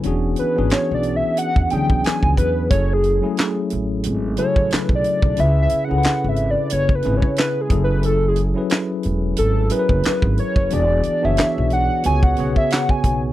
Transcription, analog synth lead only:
0, 0, Header, 1, 2, 480
1, 0, Start_track
1, 0, Key_signature, 3, "minor"
1, 0, Tempo, 666667
1, 28, Time_signature, 4, 2, 24, 8
1, 9596, End_track
2, 0, Start_track
2, 0, Title_t, "Analog synth lead"
2, 0, Program_c, 0, 81
2, 280, Note_on_c, 0, 71, 82
2, 520, Note_on_c, 0, 73, 95
2, 531, Note_off_c, 0, 71, 0
2, 674, Note_off_c, 0, 73, 0
2, 680, Note_on_c, 0, 74, 86
2, 837, Note_on_c, 0, 76, 89
2, 848, Note_off_c, 0, 74, 0
2, 992, Note_off_c, 0, 76, 0
2, 996, Note_on_c, 0, 78, 112
2, 1216, Note_off_c, 0, 78, 0
2, 1233, Note_on_c, 0, 79, 99
2, 1474, Note_on_c, 0, 80, 104
2, 1485, Note_off_c, 0, 79, 0
2, 1708, Note_off_c, 0, 80, 0
2, 1713, Note_on_c, 0, 71, 95
2, 1934, Note_off_c, 0, 71, 0
2, 1948, Note_on_c, 0, 73, 101
2, 2112, Note_on_c, 0, 68, 84
2, 2122, Note_off_c, 0, 73, 0
2, 2590, Note_off_c, 0, 68, 0
2, 3155, Note_on_c, 0, 73, 95
2, 3443, Note_off_c, 0, 73, 0
2, 3443, Note_on_c, 0, 71, 95
2, 3524, Note_off_c, 0, 71, 0
2, 3565, Note_on_c, 0, 74, 96
2, 3888, Note_on_c, 0, 76, 116
2, 3899, Note_off_c, 0, 74, 0
2, 4038, Note_off_c, 0, 76, 0
2, 4047, Note_on_c, 0, 76, 104
2, 4208, Note_on_c, 0, 78, 107
2, 4219, Note_off_c, 0, 76, 0
2, 4526, Note_on_c, 0, 76, 96
2, 4537, Note_off_c, 0, 78, 0
2, 4684, Note_on_c, 0, 74, 90
2, 4695, Note_off_c, 0, 76, 0
2, 4836, Note_off_c, 0, 74, 0
2, 4841, Note_on_c, 0, 73, 113
2, 5004, Note_on_c, 0, 71, 96
2, 5015, Note_off_c, 0, 73, 0
2, 5162, Note_on_c, 0, 73, 93
2, 5173, Note_off_c, 0, 71, 0
2, 5315, Note_off_c, 0, 73, 0
2, 5321, Note_on_c, 0, 71, 87
2, 5481, Note_on_c, 0, 68, 80
2, 5491, Note_off_c, 0, 71, 0
2, 5634, Note_off_c, 0, 68, 0
2, 5645, Note_on_c, 0, 71, 88
2, 5786, Note_off_c, 0, 71, 0
2, 5799, Note_on_c, 0, 69, 85
2, 5943, Note_off_c, 0, 69, 0
2, 5961, Note_on_c, 0, 68, 75
2, 6061, Note_off_c, 0, 68, 0
2, 6756, Note_on_c, 0, 69, 97
2, 6997, Note_on_c, 0, 71, 90
2, 7007, Note_off_c, 0, 69, 0
2, 7472, Note_off_c, 0, 71, 0
2, 7483, Note_on_c, 0, 73, 92
2, 7724, Note_on_c, 0, 74, 99
2, 7734, Note_off_c, 0, 73, 0
2, 8099, Note_on_c, 0, 76, 97
2, 8110, Note_off_c, 0, 74, 0
2, 8438, Note_off_c, 0, 76, 0
2, 8446, Note_on_c, 0, 78, 103
2, 8661, Note_off_c, 0, 78, 0
2, 8684, Note_on_c, 0, 80, 116
2, 8808, Note_on_c, 0, 78, 102
2, 8819, Note_off_c, 0, 80, 0
2, 9044, Note_off_c, 0, 78, 0
2, 9050, Note_on_c, 0, 76, 94
2, 9158, Note_on_c, 0, 78, 101
2, 9169, Note_off_c, 0, 76, 0
2, 9290, Note_on_c, 0, 80, 93
2, 9301, Note_off_c, 0, 78, 0
2, 9525, Note_off_c, 0, 80, 0
2, 9596, End_track
0, 0, End_of_file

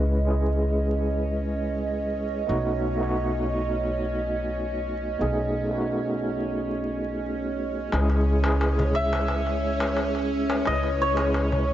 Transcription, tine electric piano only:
0, 0, Header, 1, 2, 480
1, 0, Start_track
1, 0, Key_signature, 4, "minor"
1, 0, Tempo, 681818
1, 1745, Time_signature, 4, 2, 24, 8
1, 8261, End_track
2, 0, Start_track
2, 0, Title_t, "Tine electric piano"
2, 0, Program_c, 0, 4
2, 0, Control_c, 0, 64, 127
2, 0, Note_on_c, 0, 56, 63
2, 0, Note_on_c, 0, 61, 56
2, 0, Note_on_c, 0, 64, 54
2, 0, Note_on_c, 0, 71, 67
2, 156, Note_off_c, 0, 56, 0
2, 160, Note_off_c, 0, 61, 0
2, 161, Note_off_c, 0, 64, 0
2, 166, Note_off_c, 0, 71, 0
2, 178, Note_on_c, 0, 56, 61
2, 189, Note_on_c, 0, 61, 55
2, 202, Note_on_c, 0, 64, 54
2, 215, Note_on_c, 0, 68, 68
2, 1712, Note_off_c, 0, 56, 0
2, 1717, Note_off_c, 0, 61, 0
2, 1724, Note_off_c, 0, 64, 0
2, 1730, Note_off_c, 0, 68, 0
2, 1734, Note_on_c, 0, 57, 77
2, 1739, Note_on_c, 0, 59, 75
2, 1750, Note_on_c, 0, 63, 79
2, 1753, Note_on_c, 0, 66, 89
2, 1754, Control_c, 0, 64, 0
2, 1887, Control_c, 0, 64, 127
2, 2075, Note_off_c, 0, 57, 0
2, 2077, Note_off_c, 0, 59, 0
2, 2083, Note_off_c, 0, 63, 0
2, 2084, Note_off_c, 0, 66, 0
2, 2092, Note_on_c, 0, 57, 68
2, 2106, Note_on_c, 0, 59, 61
2, 2117, Note_on_c, 0, 63, 65
2, 2132, Note_on_c, 0, 66, 78
2, 3628, Note_off_c, 0, 57, 0
2, 3636, Note_off_c, 0, 59, 0
2, 3641, Note_off_c, 0, 63, 0
2, 3648, Note_off_c, 0, 66, 0
2, 3654, Note_on_c, 0, 57, 64
2, 3658, Note_on_c, 0, 59, 58
2, 3666, Note_on_c, 0, 63, 56
2, 3673, Note_on_c, 0, 68, 72
2, 3995, Note_off_c, 0, 57, 0
2, 3997, Note_off_c, 0, 59, 0
2, 4001, Note_off_c, 0, 63, 0
2, 4004, Note_off_c, 0, 68, 0
2, 4006, Note_on_c, 0, 57, 58
2, 4019, Note_on_c, 0, 59, 57
2, 4030, Note_on_c, 0, 63, 56
2, 4044, Note_on_c, 0, 66, 73
2, 5545, Note_off_c, 0, 57, 0
2, 5552, Note_off_c, 0, 59, 0
2, 5558, Note_off_c, 0, 63, 0
2, 5565, Note_off_c, 0, 66, 0
2, 5579, Note_on_c, 0, 56, 84
2, 5584, Note_on_c, 0, 61, 72
2, 5589, Note_on_c, 0, 64, 71
2, 5595, Control_c, 0, 64, 0
2, 5597, Note_on_c, 0, 68, 87
2, 5717, Control_c, 0, 64, 127
2, 5917, Note_off_c, 0, 56, 0
2, 5920, Note_off_c, 0, 61, 0
2, 5923, Note_off_c, 0, 64, 0
2, 5926, Note_off_c, 0, 68, 0
2, 5928, Note_on_c, 0, 56, 67
2, 5942, Note_on_c, 0, 61, 68
2, 5956, Note_on_c, 0, 64, 63
2, 5968, Note_on_c, 0, 68, 78
2, 7467, Note_off_c, 0, 56, 0
2, 7474, Note_off_c, 0, 61, 0
2, 7481, Note_off_c, 0, 64, 0
2, 7487, Note_off_c, 0, 68, 0
2, 7491, Note_on_c, 0, 56, 64
2, 7496, Note_on_c, 0, 61, 57
2, 7506, Note_on_c, 0, 64, 58
2, 7515, Note_on_c, 0, 71, 72
2, 7833, Note_off_c, 0, 56, 0
2, 7836, Note_off_c, 0, 61, 0
2, 7841, Note_off_c, 0, 64, 0
2, 7845, Note_off_c, 0, 71, 0
2, 7845, Note_on_c, 0, 56, 63
2, 7858, Note_on_c, 0, 61, 57
2, 7871, Note_on_c, 0, 64, 57
2, 7884, Note_on_c, 0, 68, 69
2, 8261, Note_off_c, 0, 56, 0
2, 8261, Note_off_c, 0, 61, 0
2, 8261, Note_off_c, 0, 64, 0
2, 8261, Note_off_c, 0, 68, 0
2, 8261, End_track
0, 0, End_of_file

